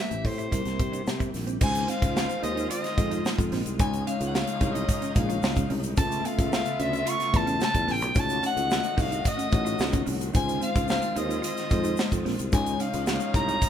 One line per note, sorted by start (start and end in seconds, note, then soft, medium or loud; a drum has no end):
0.00 0.51 C3 medium
0.00 0.49 A3 medium
0.00 0.54 A3 medium
0.00 0.51 C4 medium
0.00 0.52 C4 medium
0.00 0.54 G4 medium
0.00 1.58 G4 medium
0.00 0.55 B4 medium
0.00 0.28 E5 medium
0.11 0.22 A1 medium
0.11 closed hi-hat soft
0.11 shaker soft
0.25 0.47 A2 medium
0.25 1.35 C5 medium
0.25 muted clean electric guitar stroke soft
0.25 kick medium
0.25 open hi-hat medium
0.38 0.47 E4 medium
0.38 closed hi-hat soft
0.38 shaker soft
0.51 0.63 C2 medium
0.51 1.60 E3 medium
0.51 1.39 G3 medium
0.51 1.60 A#3 medium
0.51 1.39 C4 medium
0.51 1.60 C4 medium
0.51 0.60 E4 medium
0.51 1.39 E4 medium
0.51 1.40 A#4 medium
0.51 kick medium
0.51 closed hi-hat medium
0.51 shaker medium
0.65 0.77 C2 medium
0.65 muted clean electric guitar stroke soft
0.65 snare soft
0.65 closed hi-hat soft
0.65 shaker soft
0.79 1.02 C3 medium
0.79 kick medium
0.79 closed hi-hat medium
0.93 1.01 D4 medium
0.93 closed hi-hat medium
0.93 shaker soft
1.07 1.29 C3 medium
1.07 snare medium
1.07 shaker medium
1.20 1.28 E4 medium
1.20 kick medium
1.20 closed hi-hat soft
1.20 shaker soft
1.33 1.56 A#1 medium
1.33 muted clean electric guitar stroke soft
1.33 snare soft
1.33 open hi-hat medium
1.33 shaker soft
1.47 1.55 C4 medium
1.47 closed hi-hat soft
1.47 shaker medium
1.61 1.84 C#2 loud
1.61 3.78 D#3 medium
1.61 2.46 G#3 medium
1.61 3.48 G#3 medium
1.61 5.94 G#3 medium
1.61 3.78 C4 medium
1.61 1.69 D#4 medium
1.61 2.46 D#4 medium
1.61 3.49 F4 medium
1.61 2.46 F4 medium
1.61 3.78 F4 medium
1.61 3.48 C5 loud
1.61 2.46 C5 medium
1.61 1.91 G#5 loud
1.61 kick loud
1.61 crash loud
1.61 shaker medium
1.75 closed hi-hat medium
1.75 shaker medium
1.88 1.96 C4 medium
1.88 2.16 F5 medium
1.88 closed hi-hat medium
1.88 shaker medium
2.02 2.24 C#2 loud
2.02 muted clean electric guitar stroke soft
2.02 kick loud
2.02 closed hi-hat medium
2.02 shaker soft
2.15 2.42 F5 loud
2.15 muted clean electric guitar stroke soft
2.15 snare loud
2.15 shaker medium
2.29 closed hi-hat soft
2.29 shaker soft
2.42 2.66 D#2 medium
2.42 2.51 D#4 medium
2.42 2.69 D#5 medium
2.42 closed hi-hat medium
2.42 shaker medium
2.57 2.65 D#4 medium
2.57 closed hi-hat soft
2.57 shaker soft
2.70 2.78 F4 medium
2.70 3.49 D#5 medium
2.70 closed hi-hat loud
2.70 shaker medium
2.84 muted clean electric guitar stroke soft
2.84 snare soft
2.84 closed hi-hat soft
2.84 shaker soft
2.97 3.20 F2 medium
2.97 3.61 G#3 medium
2.97 3.61 D#4 medium
2.97 3.61 F4 medium
2.97 3.62 D#5 medium
2.97 kick loud
2.97 closed hi-hat medium
2.97 shaker soft
3.11 3.19 D#4 medium
3.11 closed hi-hat medium
3.11 shaker medium
3.26 snare loud
3.26 shaker medium
3.38 3.50 F2 medium
3.38 kick medium
3.38 closed hi-hat soft
3.38 shaker medium
3.52 3.63 A#1 loud
3.52 3.61 C4 medium
3.52 snare soft
3.52 open hi-hat medium
3.66 3.79 C2 medium
3.66 closed hi-hat medium
3.66 shaker medium
3.79 4.02 C#2 loud
3.79 8.13 C#3 medium
3.79 4.64 G#3 medium
3.79 5.67 G#3 medium
3.79 4.64 C#4 medium
3.79 5.96 C#4 medium
3.79 3.88 D#4 medium
3.79 4.65 D#4 medium
3.79 5.96 D#4 medium
3.79 5.67 F4 medium
3.79 5.67 C#5 loud
3.79 4.65 C#5 medium
3.79 4.05 G#5 loud
3.79 kick loud
3.79 closed hi-hat medium
3.79 shaker medium
3.93 closed hi-hat soft
3.93 shaker medium
4.07 4.15 C#4 medium
4.07 4.26 F5 medium
4.07 closed hi-hat medium
4.07 shaker soft
4.20 4.43 C#2 loud
4.20 muted clean electric guitar stroke soft
4.20 closed hi-hat medium
4.20 shaker soft
4.27 4.36 F#5 medium
4.34 4.75 F5 loud
4.34 snare loud
4.34 shaker medium
4.47 closed hi-hat medium
4.47 shaker soft
4.61 4.83 C2 loud
4.61 4.70 D#4 medium
4.61 kick medium
4.61 closed hi-hat medium
4.61 shaker medium
4.73 4.83 D#4 medium
4.73 5.17 D#5 medium
4.73 closed hi-hat soft
4.73 shaker medium
4.89 kick loud
4.89 closed hi-hat loud
4.89 shaker medium
5.02 5.11 C#4 medium
5.02 closed hi-hat soft
5.02 shaker soft
5.15 5.38 A#1 medium
5.15 5.79 G#3 medium
5.15 5.80 C#4 medium
5.15 5.80 D#4 medium
5.15 5.80 C#5 medium
5.15 5.70 F5 medium
5.15 muted clean electric guitar stroke soft
5.15 kick loud
5.15 closed hi-hat medium
5.15 shaker soft
5.29 5.37 F4 medium
5.29 closed hi-hat soft
5.29 shaker medium
5.42 5.66 C#2 medium
5.42 muted clean electric guitar stroke soft
5.42 snare loud
5.42 shaker medium
5.56 5.65 C#4 medium
5.56 kick medium
5.56 closed hi-hat soft
5.56 shaker medium
5.70 5.93 C2 loud
5.70 5.78 C#4 medium
5.70 open hi-hat medium
5.83 closed hi-hat medium
5.83 shaker medium
5.97 6.20 C#2 loud
5.97 6.82 A3 medium
5.97 8.14 A3 medium
5.97 8.14 B3 medium
5.97 7.85 B3 medium
5.97 6.06 C#4 medium
5.97 6.83 C#4 medium
5.97 8.14 F4 medium
5.97 6.83 F4 medium
5.97 7.85 A4 medium
5.97 6.83 B4 medium
5.97 7.85 E5 loud
5.97 6.28 A5 medium
5.97 kick loud
5.97 closed hi-hat medium
5.97 shaker medium
6.12 closed hi-hat soft
6.12 shaker medium
6.25 6.33 B3 medium
6.25 6.53 F5 medium
6.25 closed hi-hat medium
6.25 shaker soft
6.38 6.61 C#2 loud
6.38 muted clean electric guitar stroke soft
6.38 kick medium
6.38 closed hi-hat medium
6.38 shaker soft
6.52 6.83 F5 loud
6.52 muted clean electric guitar stroke soft
6.52 snare loud
6.52 shaker medium
6.65 closed hi-hat soft
6.65 shaker soft
6.80 7.02 D2 medium
6.80 6.88 C#4 medium
6.80 7.11 E5 loud
6.80 closed hi-hat medium
6.80 shaker soft
6.93 7.01 C#4 medium
6.93 closed hi-hat soft
6.93 shaker soft
7.06 7.15 F4 medium
7.06 7.38 C#6 loud
7.06 closed hi-hat loud
7.06 shaker medium
7.20 muted clean electric guitar stroke soft
7.20 snare soft
7.20 closed hi-hat medium
7.20 shaker soft
7.33 7.56 E2 medium
7.33 7.97 A3 medium
7.33 7.97 C#4 medium
7.33 7.97 F4 medium
7.33 7.98 B4 medium
7.33 7.63 A5 loud
7.33 kick loud
7.33 closed hi-hat medium
7.33 shaker soft
7.46 7.55 C#4 medium
7.46 closed hi-hat medium
7.46 shaker medium
7.61 7.93 A5 loud
7.61 snare loud
7.61 shaker medium
7.74 7.86 E2 medium
7.74 kick medium
7.74 closed hi-hat medium
7.74 shaker medium
7.88 8.02 A1 medium
7.88 7.96 B3 medium
7.88 8.21 G5 medium
7.88 snare soft
7.88 open hi-hat medium
8.02 8.13 B1 medium
8.02 closed hi-hat medium
8.02 shaker medium
8.14 8.38 C#2 loud
8.14 12.49 D#3 medium
8.14 9.00 A3 medium
8.14 10.03 A3 medium
8.14 10.33 A3 medium
8.14 10.33 C#4 medium
8.14 9.00 D#4 medium
8.14 8.24 D#4 medium
8.14 10.03 F#4 medium
8.14 9.01 F#4 medium
8.14 10.33 F#4 medium
8.14 9.01 C#5 medium
8.14 10.03 D#5 medium
8.14 kick loud
8.14 closed hi-hat medium
8.14 shaker medium
8.20 8.45 A5 medium
8.29 closed hi-hat medium
8.29 shaker medium
8.43 8.51 C#4 medium
8.43 9.02 F#5 loud
8.43 closed hi-hat medium
8.43 shaker medium
8.56 8.79 C#2 loud
8.56 muted clean electric guitar stroke soft
8.56 closed hi-hat medium
8.56 shaker soft
8.70 muted clean electric guitar stroke soft
8.70 snare loud
8.70 shaker medium
8.84 closed hi-hat soft
8.84 shaker soft
8.97 9.20 C2 medium
8.97 9.06 D#4 medium
8.97 9.29 F5 loud
8.97 kick medium
8.97 open hi-hat medium
8.97 shaker soft
9.11 9.20 D#4 medium
9.11 closed hi-hat soft
9.11 shaker soft
9.25 10.09 D#5 medium
9.25 kick medium
9.25 closed hi-hat loud
9.25 shaker medium
9.37 9.46 C#4 medium
9.37 closed hi-hat medium
9.37 shaker medium
9.51 9.75 A1 medium
9.51 10.16 A3 medium
9.51 10.16 D#4 medium
9.51 10.16 F#4 medium
9.51 10.16 C#5 medium
9.51 muted clean electric guitar stroke soft
9.51 kick loud
9.51 closed hi-hat medium
9.51 shaker soft
9.65 9.74 F4 medium
9.65 closed hi-hat medium
9.65 shaker medium
9.79 10.02 C#2 loud
9.79 muted clean electric guitar stroke soft
9.79 snare loud
9.79 shaker medium
9.93 10.01 C#4 medium
9.93 kick medium
9.93 closed hi-hat medium
9.93 shaker medium
10.06 10.30 C2 loud
10.06 10.15 C#4 medium
10.06 open hi-hat medium
10.06 shaker medium
10.21 closed hi-hat medium
10.21 shaker medium
10.33 10.57 C#2 loud
10.33 11.19 G#3 medium
10.33 13.69 G#3 medium
10.33 12.22 G#3 medium
10.33 12.51 C4 medium
10.33 10.42 D#4 medium
10.33 11.19 D#4 medium
10.33 11.19 F4 medium
10.33 12.22 F4 medium
10.33 12.51 F4 medium
10.33 11.19 C5 medium
10.33 12.22 C5 medium
10.33 10.61 G#5 loud
10.33 kick loud
10.33 closed hi-hat medium
10.33 shaker medium
10.49 closed hi-hat soft
10.49 shaker medium
10.61 10.70 C4 medium
10.61 10.88 F5 medium
10.61 closed hi-hat medium
10.61 shaker medium
10.75 10.98 C#2 loud
10.75 muted clean electric guitar stroke soft
10.75 kick medium
10.75 closed hi-hat medium
10.75 shaker soft
10.88 11.19 F5 medium
10.88 muted clean electric guitar stroke soft
10.88 snare loud
10.88 shaker medium
11.02 closed hi-hat soft
11.02 shaker soft
11.16 11.39 D#2 loud
11.16 11.24 D#4 medium
11.16 11.44 D#5 medium
11.16 closed hi-hat medium
11.16 shaker medium
11.29 11.37 D#4 medium
11.29 closed hi-hat soft
11.29 shaker soft
11.42 11.51 F4 medium
11.42 12.22 D#5 medium
11.42 closed hi-hat loud
11.42 shaker medium
11.57 muted clean electric guitar stroke soft
11.57 snare soft
11.57 closed hi-hat medium
11.57 shaker soft
11.70 11.93 F2 medium
11.70 12.34 G#3 medium
11.70 12.34 D#4 medium
11.70 12.35 F4 medium
11.70 12.35 C5 medium
11.70 kick loud
11.70 closed hi-hat medium
11.70 shaker soft
11.84 11.93 D#4 medium
11.84 closed hi-hat medium
11.84 shaker medium
11.97 snare loud
11.97 shaker medium
12.12 12.23 F2 medium
12.12 kick medium
12.12 closed hi-hat medium
12.12 shaker medium
12.25 12.37 A#1 loud
12.25 12.34 C4 medium
12.25 snare soft
12.25 open hi-hat medium
12.39 12.53 C2 medium
12.39 closed hi-hat medium
12.39 shaker medium
12.52 12.75 C#2 loud
12.52 13.69 C#3 medium
12.52 13.37 G#3 medium
12.52 13.69 G#3 medium
12.52 13.37 C#4 medium
12.52 13.69 C#4 medium
12.52 13.37 D#4 medium
12.52 12.61 D#4 medium
12.52 13.69 D#4 medium
12.52 13.69 F4 medium
12.52 13.38 C#5 medium
12.52 13.69 C#5 loud
12.52 12.83 G#5 medium
12.52 kick loud
12.52 closed hi-hat medium
12.52 shaker medium
12.66 closed hi-hat soft
12.66 shaker medium
12.80 12.88 C#4 medium
12.80 13.08 F5 medium
12.80 closed hi-hat medium
12.80 shaker medium
12.94 13.16 C#2 loud
12.94 muted clean electric guitar stroke soft
12.94 closed hi-hat medium
12.94 shaker soft
13.07 13.33 F5 medium
13.07 muted clean electric guitar stroke soft
13.07 snare loud
13.07 shaker medium
13.20 closed hi-hat soft
13.20 shaker soft
13.34 13.56 C2 medium
13.34 13.43 D#4 medium
13.34 13.69 A#5 loud
13.34 kick medium
13.34 closed hi-hat medium
13.34 shaker medium
13.48 13.56 D#4 medium
13.48 closed hi-hat soft
13.48 shaker medium
13.62 kick loud
13.62 closed hi-hat loud
13.62 shaker medium